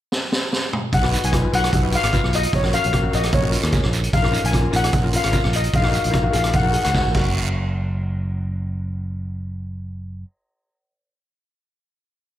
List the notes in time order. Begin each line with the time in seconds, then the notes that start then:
0.12 snare
0.32 snare
0.53 snare
0.73 mid tom
0.93 B1 F#5, kick, closed hi-hat, long guiro
1.02 D#4 F#4 B4, cross-stick
1.11 D#4 F#4 B4, closed hi-hat, short guiro
1.24 B1 G#5, closed hi-hat
1.32 D#4 F4 B4, kick, cross-stick, closed hi-hat
1.42 D#4 F4 B4
1.52 B1 D#4 F#4 B4 F#5, closed hi-hat
1.64 cross-stick, closed hi-hat
1.73 B1, kick, closed hi-hat, long guiro
1.83 D#4 F#4 B4
1.91 D#4 F#4 B4, closed hi-hat
1.95 F5
2.04 G#1, cross-stick, closed hi-hat
2.13 D#4 F4 B4, kick, closed hi-hat, short guiro
2.24 B1, cross-stick
2.33 D#5, closed hi-hat, short guiro
2.43 closed hi-hat
2.53 A#1 C#5, kick, closed hi-hat, long guiro
2.63 C#4 F#4 A#4, cross-stick
2.73 C#4 F#4 A#4 F5, closed hi-hat, short guiro
2.84 A#1, closed hi-hat
2.93 C#4 F#4 A#4, kick, cross-stick, closed hi-hat
3.02 C#4 F#4 A#4
3.11 A#1 C#4 F#4 A#4, closed hi-hat, short guiro
3.15 D#5
3.23 cross-stick, closed hi-hat
3.33 A#1 C#5, kick, closed hi-hat, long guiro
3.42 C#4 F#4 A#4
3.50 C#4 F4 A#4, closed hi-hat
3.63 D#2, cross-stick, closed hi-hat
3.71 C#4 G#4 A#4, kick, closed hi-hat, short guiro
3.83 A#1, cross-stick
3.93 closed hi-hat, short guiro
4.04 closed hi-hat
4.13 A#1 F5, kick, closed hi-hat, long guiro
4.22 C#4 F4 A#4, cross-stick
4.31 C#4 D#4 A#4, closed hi-hat, short guiro
4.44 A#1 G#5, closed hi-hat
4.51 C#4 F4 A#4, kick, cross-stick, closed hi-hat
4.61 C#4 F4 A#4
4.71 A#1 C#4 D#4 A#4, closed hi-hat, short guiro
4.76 F#5
4.84 cross-stick, closed hi-hat
4.93 A#1, kick, closed hi-hat, long guiro
5.02 C#4 F4 A#4
5.13 C#4 F4 A#4 F5, closed hi-hat
5.24 G#1, cross-stick, closed hi-hat
5.32 C#4 F4 A#4, kick, closed hi-hat, short guiro
5.44 A#1, cross-stick
5.53 D#5, closed hi-hat, short guiro
5.64 closed hi-hat
5.73 A#1 F5, kick, closed hi-hat, long guiro
5.82 D#4 F#4 A#4 F5, cross-stick
5.90 D#4 F#4 A#4 F5, closed hi-hat, short guiro
5.98 F5
6.04 A#1 F5, closed hi-hat
6.10 D#4 F4 A#4, kick, cross-stick, closed hi-hat
6.16 F5
6.22 D#4 F#4 A#4 F5
6.31 A#1 D#4 G#4 A#4 F5, closed hi-hat, short guiro
6.36 F5
6.43 F5, cross-stick, closed hi-hat
6.53 A#1 F#5, kick, closed hi-hat, long guiro
6.63 D#4 F#4 A#4 F#5
6.69 D#4 G#4 A#4 F#5
6.74 F#5, closed hi-hat
6.84 C#2 F#5, cross-stick, closed hi-hat
6.91 D#4 F#4 A#4 F#5, kick, snare, short guiro
6.98 F#5
7.07 A#1
7.11 F#1 C#4 A#4, kick, crash
7.15 F#4, long guiro